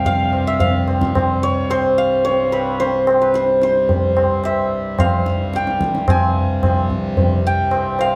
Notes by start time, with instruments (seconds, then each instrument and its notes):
Already playing: harmonium C2 G2, santur G5
0.05 santur F5, tabla tin, tabla ge
0.33 tabla na
0.47 santur E5
0.60 santur F5, tabla tin, tabla ge
0.88 tabla na
1.01 tabla ke
1.15 tabla na, tabla ge
1.43 santur C#5
1.70 santur C5, tabla na
1.98 santur F5
2.25 santur C#5, tabla tin
2.52 santur B4, tabla na
2.80 santur C5, tabla tin
3.07 tabla na
3.22 santur B4
3.34 santur C5, tabla te
3.62 santur C5, tabla te
3.89 tabla tin, tabla ge
4.17 tabla na
4.44 santur E5, tabla na
4.99 santur F5, tabla na, tabla ge
5.26 tabla te
5.53 santur G5, tabla te
5.67 tabla te
5.81 tabla ke
5.95 tabla te
6.07 harmonium C2 G2, santur G#5, tabla na, tabla ge
6.63 tabla na, tabla ge
6.90 tabla ge
7.17 tabla tin, tabla ge
7.47 santur G5
7.71 tabla na
7.99 santur F5, tabla na